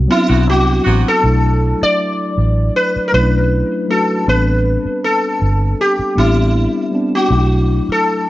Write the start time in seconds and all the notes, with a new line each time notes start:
Already playing: F#3 B3 C4 F#4
0.08 F#3 B3 C4 D4 E4
0.18 E4
0.28 B1 C3 B3 F#4
0.47 C2 F#4
0.84 A1 C3 B3 F#4
1.08 A4
1.22 B1 F#3 A3 D4 E4
1.82 D5, muted fingered electric bass stroke
2.38 A1
2.76 B4
2.96 muted fingered electric bass stroke
3.08 A#4
3.12 B1 F#3 A3 C#4 E4 B4
3.21 D4
3.88 F#3 A3 D4 F#4 A4
4.25 A1 G3 B3 C4 D4
4.29 B4
4.85 muted fingered electric bass stroke
5.04 A4
5.42 G1
5.81 G4
5.99 muted fingered electric bass stroke
6.16 A1 G3 B3 C4 D4 E4
6.91 G3 B3 C4 D4
7.15 F#4
7.29 B1 F#3 A3 C#4 E4
7.38 D4
7.89 A4, muted fingered electric bass stroke